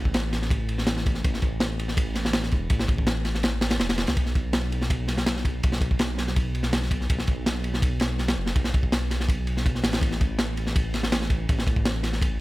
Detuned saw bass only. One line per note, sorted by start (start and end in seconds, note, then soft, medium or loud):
0.00 1.23 A1 medium
1.24 1.41 A1 loud
1.42 2.51 A1 medium
2.52 2.69 E1 loud
2.70 2.87 A1 loud
2.88 3.79 A1 medium
3.80 4.06 E1 medium
4.08 4.16 C#2 loud
4.17 5.62 B1 loud
5.64 5.80 B1 medium
5.81 7.08 B1 loud
7.10 7.26 B1 loud
7.28 8.36 B1 loud
8.38 8.54 F#1 loud
8.56 8.72 B1 loud
8.74 9.65 B1 medium
9.66 9.82 B1 medium
9.84 10.00 A1 medium
10.01 11.47 A1 loud
11.49 11.65 A1 loud
11.67 12.40 A1 loud